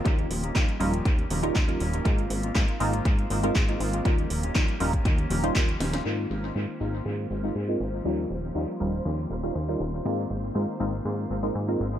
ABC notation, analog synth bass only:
X:1
M:4/4
L:1/8
Q:1/4=120
K:Ab
V:1 name="Analog synth bass" clef=bass
E,, E,,, E,, E,,, E,, E,,, E,, E,,, | A,, A,,, A,, A,,, A,, A,,, A,, A,,, | E,, E,,, E,, E,,, E,, E,,, E,, E,,, | A,, A,,, A,, A,,, A,, A,,, A,, A,,, |
E,, E,,, E,, E,,, E,, E,,, E,, E,,, | A,, A,,, A,, A,,, A,, A,,, A,, A,,, |]